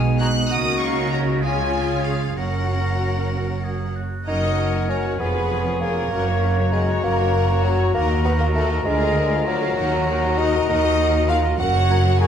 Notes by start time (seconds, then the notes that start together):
Already playing: B1 B2 G#3 D#4 F#4 G#5
0.19 G#3 D#4 F#4 G#4 B4 A#5 F#6
0.51 C#2 C#3 A#3 C#4 F#4 A#4 F#5 D#6
0.81 F5 C#6
1.12 C#5 A#5
1.41 G#3 C#4 F4 G#4 C#5 G#5
2.06 G#4 F5
2.37 F#1 F#2 A#3 C#4 F#4 A#4 C#5 F#5
3.32 A#4
3.64 G#4
3.96 F#4
4.27 F#1 F#2 C#4 D#4 F#4 A#4 C#5 D#5 F#5 A#5
4.43 F#4 C#5 F#5
4.58 C#4 A#4 A#5
4.74 F#4 C#5 F#5
4.89 C#4 A#4 C#5 A#5
5.03 F#4 C#5 F#5
5.18 F1 F2 B3 F4 G#4 B4 C#5 G#5
5.34 F4 G#4 C#5
5.50 F4 G#4 B4
5.66 F4 G#4 C#5
5.81 A#3 F4 G#4 A#4 B4
5.96 F4 G#4 C#5
6.10 F#1 F#2 C#4 F#4 A#4 F#5 A#5
6.27 F#4 C#5
6.42 C#4 A#4 F#5
6.57 F#4 C#5
6.73 G#3 C#4 G#4 A#4 F#5
6.89 F#4 C#5
7.04 F#1 F#2 A#3 C#4 A#4 F#5
7.18 F#4 C#5
7.35 C#4 A#4 F#5
7.50 F#4 C#5
7.64 F#3 C#4 F#4 A#4 F#5
7.80 F#4 C#5
7.94 D#2 A#3 D#4 A#4 F#5
8.10 F#4 D#5
8.25 B3 D#4 A#4 B4 F#5
8.39 A#3 F#4 A#4 D#5
8.55 A3 D#4 A4 A#4 F#5
8.70 F#4 D#5
8.85 D2 G#3 D4 F4 G#4 A#4 D5
9.00 F4 G#4 F5
9.17 D4 A#4 D5
9.32 F4 G#4 F5
9.47 F#3 D4 F#4 A#4 D5
9.63 F4 G#4 F5
9.77 D#2 D#4 F#4 A#4 F#5 A#5
9.93 F#4 D#5
10.09 D#4 A#4 F#5
10.24 F#4 D#5
10.38 D#4 A#4 D#5 F#5
10.55 F#4 D#5
10.68 D#2 D#4 A#4 D#5 F#5
10.84 F#4 D#5
10.99 D#4 A#4 F#5
11.14 F#4 D#5
11.29 D#4 F4 A#4 F5 F#5
11.44 F#4 D#5
11.59 F#1 F#2 C#4 F#4 A#4 F#5
11.74 F#4 C#5
11.90 C#4 F#4 A#4 C#5 F#5 A#5
12.05 F#4 C#5
12.20 C#4 F#4 G#4 A#4 C#5 F#5 G#5 A#5